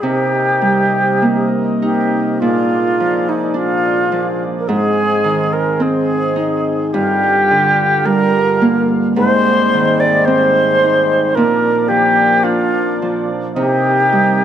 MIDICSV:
0, 0, Header, 1, 4, 480
1, 0, Start_track
1, 0, Key_signature, -3, "minor"
1, 0, Tempo, 1178782
1, 15, Time_signature, 4, 2, 24, 8
1, 1455, Tempo, 1119403
1, 3375, Tempo, 1096892
1, 5295, Tempo, 1125704
1, 6151, End_track
2, 0, Start_track
2, 0, Title_t, "Flute"
2, 0, Program_c, 0, 73
2, 8, Note_on_c, 0, 67, 83
2, 605, Note_off_c, 0, 67, 0
2, 734, Note_on_c, 0, 67, 65
2, 979, Note_on_c, 0, 65, 71
2, 985, Note_off_c, 0, 67, 0
2, 1339, Note_on_c, 0, 63, 67
2, 1345, Note_off_c, 0, 65, 0
2, 1452, Note_on_c, 0, 65, 78
2, 1458, Note_off_c, 0, 63, 0
2, 1824, Note_off_c, 0, 65, 0
2, 1891, Note_on_c, 0, 70, 55
2, 1929, Note_on_c, 0, 68, 88
2, 1935, Note_off_c, 0, 70, 0
2, 2293, Note_on_c, 0, 70, 72
2, 2300, Note_off_c, 0, 68, 0
2, 2419, Note_on_c, 0, 68, 82
2, 2426, Note_off_c, 0, 70, 0
2, 2894, Note_on_c, 0, 67, 89
2, 2901, Note_off_c, 0, 68, 0
2, 3377, Note_on_c, 0, 70, 100
2, 3383, Note_off_c, 0, 67, 0
2, 3746, Note_off_c, 0, 70, 0
2, 3859, Note_on_c, 0, 72, 117
2, 4228, Note_on_c, 0, 74, 97
2, 4234, Note_off_c, 0, 72, 0
2, 4339, Note_on_c, 0, 72, 104
2, 4345, Note_off_c, 0, 74, 0
2, 4819, Note_on_c, 0, 70, 93
2, 4825, Note_off_c, 0, 72, 0
2, 5052, Note_on_c, 0, 67, 89
2, 5059, Note_off_c, 0, 70, 0
2, 5293, Note_on_c, 0, 65, 85
2, 5300, Note_off_c, 0, 67, 0
2, 5659, Note_off_c, 0, 65, 0
2, 5772, Note_on_c, 0, 67, 90
2, 6151, Note_off_c, 0, 67, 0
2, 6151, End_track
3, 0, Start_track
3, 0, Title_t, "Accordion"
3, 0, Program_c, 1, 21
3, 7, Note_on_c, 1, 48, 57
3, 10, Note_on_c, 1, 63, 62
3, 12, Note_on_c, 1, 58, 53
3, 968, Note_off_c, 1, 48, 0
3, 969, Note_off_c, 1, 63, 0
3, 970, Note_off_c, 1, 58, 0
3, 980, Note_on_c, 1, 46, 58
3, 982, Note_on_c, 1, 62, 62
3, 983, Note_on_c, 1, 56, 55
3, 1926, Note_off_c, 1, 46, 0
3, 1928, Note_off_c, 1, 56, 0
3, 1928, Note_off_c, 1, 62, 0
3, 1940, Note_on_c, 1, 60, 72
3, 1941, Note_on_c, 1, 56, 61
3, 1944, Note_on_c, 1, 44, 69
3, 2888, Note_off_c, 1, 56, 0
3, 2888, Note_off_c, 1, 60, 0
3, 2890, Note_off_c, 1, 44, 0
3, 2897, Note_on_c, 1, 50, 64
3, 2898, Note_on_c, 1, 43, 69
3, 2898, Note_on_c, 1, 65, 67
3, 3848, Note_off_c, 1, 43, 0
3, 3848, Note_off_c, 1, 50, 0
3, 3848, Note_off_c, 1, 65, 0
3, 3855, Note_on_c, 1, 60, 86
3, 3858, Note_on_c, 1, 44, 78
3, 3863, Note_on_c, 1, 55, 68
3, 4809, Note_off_c, 1, 60, 0
3, 4810, Note_off_c, 1, 44, 0
3, 4810, Note_on_c, 1, 46, 66
3, 4813, Note_off_c, 1, 55, 0
3, 4813, Note_on_c, 1, 62, 76
3, 4814, Note_on_c, 1, 53, 60
3, 5757, Note_off_c, 1, 46, 0
3, 5759, Note_off_c, 1, 53, 0
3, 5759, Note_off_c, 1, 62, 0
3, 5768, Note_on_c, 1, 48, 68
3, 5768, Note_on_c, 1, 58, 63
3, 5769, Note_on_c, 1, 63, 72
3, 6151, Note_off_c, 1, 48, 0
3, 6151, Note_off_c, 1, 58, 0
3, 6151, Note_off_c, 1, 63, 0
3, 6151, End_track
4, 0, Start_track
4, 0, Title_t, "Harp"
4, 0, Program_c, 2, 46
4, 0, Note_on_c, 2, 62, 46
4, 0, Note_on_c, 2, 65, 53
4, 12, Note_on_c, 2, 48, 51
4, 60, Note_off_c, 2, 65, 0
4, 251, Note_on_c, 2, 55, 40
4, 412, Note_off_c, 2, 62, 0
4, 497, Note_on_c, 2, 58, 45
4, 742, Note_on_c, 2, 63, 47
4, 984, Note_on_c, 2, 46, 52
4, 1002, Note_off_c, 2, 48, 0
4, 1002, Note_off_c, 2, 55, 0
4, 1222, Note_on_c, 2, 53, 45
4, 1442, Note_on_c, 2, 62, 50
4, 1467, Note_off_c, 2, 63, 0
4, 1684, Note_off_c, 2, 53, 0
4, 1689, Note_on_c, 2, 53, 52
4, 1825, Note_off_c, 2, 58, 0
4, 1932, Note_on_c, 2, 44, 62
4, 1959, Note_off_c, 2, 46, 0
4, 1959, Note_off_c, 2, 53, 0
4, 2171, Note_on_c, 2, 51, 51
4, 2197, Note_off_c, 2, 62, 0
4, 2409, Note_on_c, 2, 60, 55
4, 2650, Note_on_c, 2, 63, 55
4, 2898, Note_on_c, 2, 43, 62
4, 2918, Note_off_c, 2, 44, 0
4, 2918, Note_off_c, 2, 51, 0
4, 3143, Note_on_c, 2, 50, 50
4, 3168, Note_off_c, 2, 63, 0
4, 3376, Note_on_c, 2, 55, 57
4, 3622, Note_on_c, 2, 58, 56
4, 3702, Note_off_c, 2, 60, 0
4, 3861, Note_on_c, 2, 44, 67
4, 3879, Note_off_c, 2, 43, 0
4, 3879, Note_off_c, 2, 50, 0
4, 3879, Note_off_c, 2, 55, 0
4, 4113, Note_on_c, 2, 51, 57
4, 4348, Note_on_c, 2, 60, 60
4, 4592, Note_on_c, 2, 63, 53
4, 4828, Note_on_c, 2, 46, 64
4, 4841, Note_off_c, 2, 44, 0
4, 4841, Note_off_c, 2, 51, 0
4, 5029, Note_off_c, 2, 58, 0
4, 5059, Note_on_c, 2, 53, 51
4, 5296, Note_on_c, 2, 62, 53
4, 5322, Note_off_c, 2, 63, 0
4, 5538, Note_off_c, 2, 53, 0
4, 5544, Note_on_c, 2, 53, 48
4, 5651, Note_off_c, 2, 60, 0
4, 5774, Note_on_c, 2, 48, 61
4, 5793, Note_off_c, 2, 46, 0
4, 5793, Note_off_c, 2, 53, 0
4, 6014, Note_on_c, 2, 55, 46
4, 6151, Note_off_c, 2, 48, 0
4, 6151, Note_off_c, 2, 55, 0
4, 6151, Note_off_c, 2, 62, 0
4, 6151, End_track
0, 0, End_of_file